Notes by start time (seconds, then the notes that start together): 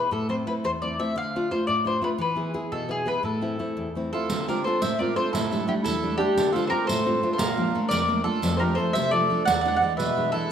Already playing: B4
0.11 A2 A4
0.29 A3 C4 E4 C5
0.47 A3 C4 E4 B4
0.64 E2 C5
0.82 A3 C4 E4 D5
0.99 A3 C4 E4 E5
1.16 D3 F5
1.36 A3 D4 F4
1.51 A3 D4 F4 C5
1.67 A2 D5
1.84 A3 D4 F4 C5
2.02 A3 D4 F4 B4
2.18 E3 B4
2.35 B3 E4 G#4
2.54 B3 E4 G#4
2.72 B2 A4
2.88 B3 E4 G#4
3.06 B3 E4 G#4 B4
3.23 A2 A4
3.41 A3 C4 E4
3.59 A3 C4 E4
3.77 E2
3.95 A3 C4 E4
4.13 A3 C4 E4 F4 A4
4.30 D3, riq
4.48 C4 D4 F4 G4 A#4, riq
4.64 C4 D4 F4 A4 C5
4.81 A2 C5 E5, riq
4.99 C4 D4 F4 A#4 D5
5.15 C4 D4 F4 A4 C5
5.31 A2 E4 A4, riq
5.51 G3 A3 D4, riq
5.67 G3 A3 D4 E4 G4
5.82 E2 E4 A4, riq
6.03 G3 A3 D4
6.18 G3 A3 D4 G4
6.37 D3, riq
6.52 C4 D4 F4 A4
6.56 riq
6.66 G4 A4 A#4 C5
6.70 C4 D4 F4
6.85 A4 C5
6.89 A2, riq
7.05 C4 D4 F4
7.22 C4 D4 F4
7.31 A4 C5
7.36 F4 A#4, riq
7.40 A#2
7.57 F3 A#3 D4
7.75 A3 A#3 D4
7.88 F2 A#4 D5, riq
8.08 A3 A#3 D4
8.24 A3 A#3 D4 F4 A4
8.42 F2, riq
8.57 F3 A3 G4 A4 A#4 C5
8.61 D4
8.75 F3 A3 A4 C5
8.79 D4
8.93 C3 C5 E5, riq
9.11 F3 A3 D4 A4 D5
9.30 F3 A3 D4
9.44 E2 D5 F#5, riq
9.53 F#5
9.61 E3 F#5
9.65 G#3 D4 F#5, riq
9.76 F#5
9.82 E3 G#3 D4 F#5
9.97 B2 B4 E5, riq
10.17 E3 G#3 D4
10.32 E3 G#3 D4 E4 A4